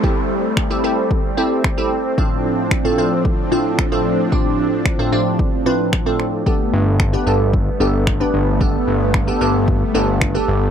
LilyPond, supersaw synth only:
\new Staff \with { instrumentName = "Supersaw synth" } { \time 4/4 \key d \dorian \tempo 4 = 112 <g a c'>1 | <a, f d'>1~ | <a, f d'>1 | <g a b>1~ |
<g a b>1 | }